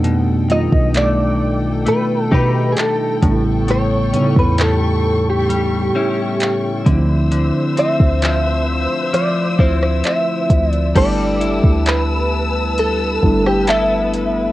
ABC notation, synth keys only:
X:1
M:4/4
L:1/8
Q:1/4=66
K:G
V:1 name="Synth keys"
[G,A,B,D^D] [^D,G,A,B,=F]3 z3 [^C,G,A,B,=DE]- | [^C,G,A,B,DE] [C,G,A,B,_E=E]3 z3 [D,=F,A,=C_E=E]- | [D,=F,A,C_E=E] [D,F,A,CE]3 z4 | [G,A,B,DE]3 z2 [G,A,B,DE]3 |]